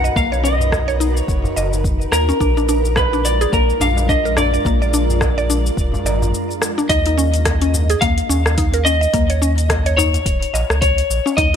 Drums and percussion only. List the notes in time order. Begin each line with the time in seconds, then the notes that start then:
0.05 shaker
0.16 kick, shaker
0.32 darbuka ka, shaker
0.45 shaker
0.60 darbuka dum, shaker
0.72 kick, cross-stick, darbuka tek, shaker
0.89 shaker
1.01 shaker
1.17 shaker
1.28 kick, shaker
1.44 darbuka dum, shaker
1.57 darbuka ka, darbuka tek, shaker
1.73 darbuka dum, shaker
1.84 kick, shaker
2.01 shaker
2.12 cross-stick, darbuka ka, darbuka tek, shaker
2.29 darbuka ka, shaker
2.40 kick, shaker
2.57 darbuka ka, shaker
2.69 shaker
2.85 shaker
2.96 kick, cross-stick, darbuka tek, shaker
3.13 shaker
3.25 darbuka tek, shaker
3.41 shaker
3.53 kick, shaker
3.70 shaker
3.80 darbuka dum, shaker
3.96 darbuka ka, darbuka tek, shaker
4.09 kick, shaker
4.26 shaker
4.37 cross-stick, darbuka dum, shaker
4.54 shaker
4.65 kick, shaker
4.81 darbuka ka, shaker
4.94 shaker
5.10 darbuka dum, shaker
5.21 kick, cross-stick, darbuka tek, shaker
5.38 shaker
5.50 darbuka tek, shaker
5.66 shaker
5.77 kick, shaker
5.94 darbuka dum, shaker
6.06 darbuka ka, darbuka tek, shaker
6.22 darbuka dum, shaker
6.34 shaker
6.51 shaker
6.61 cross-stick, darbuka ka, darbuka tek, shaker
6.78 darbuka ka, shaker
6.90 kick, closed hi-hat, shaker
7.06 closed hi-hat, shaker
7.19 shaker
7.34 closed hi-hat, shaker
7.45 kick, cross-stick, closed hi-hat, darbuka tek, shaker
7.61 closed hi-hat, shaker
7.74 darbuka tek, darbuka dum, shaker
7.90 closed hi-hat, shaker
8.02 kick, closed hi-hat, darbuka ka, shaker
8.18 closed hi-hat, shaker
8.30 darbuka ka, shaker
8.46 cross-stick, darbuka tek, shaker
8.58 kick, closed hi-hat, shaker
8.74 closed hi-hat, shaker
8.86 darbuka ka, shaker
9.03 shaker
9.14 kick, closed hi-hat, shaker
9.30 closed hi-hat, shaker
9.43 shaker
9.58 closed hi-hat, shaker
9.69 kick, cross-stick, closed hi-hat, darbuka tek, darbuka dum, shaker
9.86 closed hi-hat, shaker
9.98 darbuka dum, shaker
10.14 closed hi-hat, darbuka ka, shaker
10.26 kick, closed hi-hat, shaker
10.42 closed hi-hat, shaker
10.53 darbuka ka, darbuka tek, shaker
10.70 cross-stick, shaker
10.82 kick, closed hi-hat, shaker
10.98 closed hi-hat, shaker
11.10 darbuka tek, shaker
11.26 darbuka ka, shaker
11.38 kick, closed hi-hat, shaker